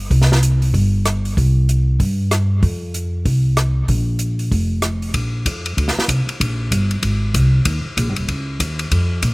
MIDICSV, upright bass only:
0, 0, Header, 1, 3, 480
1, 0, Start_track
1, 0, Tempo, 314301
1, 176, Time_signature, 4, 2, 24, 8
1, 14263, End_track
2, 0, Start_track
2, 0, Title_t, "Upright bass"
2, 0, Program_c, 0, 32
2, 157, Note_on_c, 0, 36, 78
2, 1078, Note_off_c, 0, 36, 0
2, 1118, Note_on_c, 0, 31, 74
2, 2039, Note_off_c, 0, 31, 0
2, 2096, Note_on_c, 0, 36, 78
2, 3008, Note_off_c, 0, 36, 0
2, 3045, Note_on_c, 0, 43, 76
2, 3963, Note_off_c, 0, 43, 0
2, 4006, Note_on_c, 0, 41, 80
2, 4923, Note_off_c, 0, 41, 0
2, 4971, Note_on_c, 0, 36, 70
2, 5886, Note_off_c, 0, 36, 0
2, 5931, Note_on_c, 0, 34, 74
2, 6846, Note_off_c, 0, 34, 0
2, 6894, Note_on_c, 0, 29, 68
2, 7807, Note_off_c, 0, 29, 0
2, 7856, Note_on_c, 0, 34, 72
2, 8321, Note_off_c, 0, 34, 0
2, 8332, Note_on_c, 0, 41, 76
2, 8799, Note_off_c, 0, 41, 0
2, 8812, Note_on_c, 0, 38, 73
2, 9087, Note_off_c, 0, 38, 0
2, 9287, Note_on_c, 0, 36, 72
2, 9564, Note_off_c, 0, 36, 0
2, 9773, Note_on_c, 0, 34, 76
2, 10240, Note_off_c, 0, 34, 0
2, 10246, Note_on_c, 0, 31, 76
2, 10716, Note_off_c, 0, 31, 0
2, 10725, Note_on_c, 0, 32, 65
2, 11195, Note_off_c, 0, 32, 0
2, 11215, Note_on_c, 0, 36, 82
2, 11676, Note_off_c, 0, 36, 0
2, 11685, Note_on_c, 0, 39, 77
2, 11963, Note_off_c, 0, 39, 0
2, 12170, Note_on_c, 0, 34, 91
2, 12348, Note_off_c, 0, 34, 0
2, 12348, Note_on_c, 0, 31, 43
2, 12501, Note_off_c, 0, 31, 0
2, 12511, Note_on_c, 0, 27, 55
2, 12635, Note_off_c, 0, 27, 0
2, 12644, Note_on_c, 0, 37, 69
2, 13114, Note_off_c, 0, 37, 0
2, 13127, Note_on_c, 0, 39, 78
2, 13596, Note_off_c, 0, 39, 0
2, 13614, Note_on_c, 0, 41, 81
2, 14079, Note_off_c, 0, 41, 0
2, 14093, Note_on_c, 0, 46, 85
2, 14263, Note_off_c, 0, 46, 0
2, 14263, End_track
3, 0, Start_track
3, 0, Title_t, "Muted upright bass strokes"
3, 9109, Note_on_c, 9, 29, 38
3, 9261, Note_off_c, 9, 29, 0
3, 9571, Note_on_c, 9, 29, 36
3, 9724, Note_off_c, 9, 29, 0
3, 11981, Note_on_c, 9, 29, 37
3, 12134, Note_off_c, 9, 29, 0
3, 14263, End_track
0, 0, End_of_file